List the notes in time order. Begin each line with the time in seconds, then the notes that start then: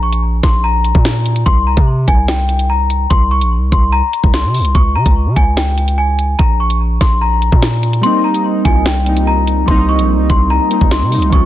Already playing: A#1
0.03 C#6
0.13 closed hi-hat
0.43 A#1 C6, kick, snare, closed hi-hat
0.64 A#5
0.84 closed hi-hat
0.95 A#2, kick
1.05 snare
1.26 closed hi-hat
1.36 closed hi-hat
1.46 C2 C6, kick, closed hi-hat
1.67 A#5
1.77 C3, kick, closed hi-hat
2.08 C2 G#5, kick, closed hi-hat
2.28 G5, snare, closed hi-hat
2.49 closed hi-hat
2.59 closed hi-hat
2.70 A#5
2.90 closed hi-hat
3.10 C2 C6, kick, closed hi-hat
3.31 C#6
3.41 A#1, closed hi-hat
3.57 C2
3.72 C2 C6, kick, closed hi-hat
3.92 A#5
4.13 closed hi-hat
4.24 C2, kick
4.34 C6, snare
4.44 C3
4.54 open hi-hat
4.60 C2
4.65 closed hi-hat
4.75 C#2 C#6, kick, closed hi-hat
4.95 C#3 A#5
5.06 C#2, kick, closed hi-hat
5.26 C#3
5.36 C#2 G#5, kick, closed hi-hat
5.57 G5, snare, closed hi-hat
5.78 closed hi-hat
5.88 closed hi-hat
5.98 G#5
6.19 closed hi-hat
6.39 A#1 A#5, kick, closed hi-hat
6.60 C#6
6.70 closed hi-hat
7.01 A#1 C6, kick, snare, closed hi-hat
7.21 A#5
7.42 closed hi-hat
7.52 A#2, kick
7.63 snare
7.83 closed hi-hat
7.93 closed hi-hat
8.01 G3 A#3 C4 C6, closed hi-hat
8.06 D#4
8.24 A#5
8.34 closed hi-hat
8.63 C2 G3 A#3 C4 G#5, kick, closed hi-hat
8.68 F4
8.86 G5, snare, closed hi-hat
9.04 G3 A#3 C4, closed hi-hat
9.09 D#4
9.17 closed hi-hat
9.27 A#5
9.47 closed hi-hat
9.66 C2 G3 A#3 C4 C6, kick, closed hi-hat
9.71 D#4
9.89 C#6
9.99 A#1, closed hi-hat
10.14 C2
10.30 C2 C6, kick, closed hi-hat
10.50 A#5
10.69 G3 A#3 C4, closed hi-hat
10.73 D#4
10.81 C2, kick
10.91 C6, snare
11.02 C3
11.09 G3 A#3 C4, open hi-hat
11.14 C2 D#4
11.22 closed hi-hat
11.30 C#2 F3 G#3 C#4 C#6, kick, closed hi-hat
11.35 F4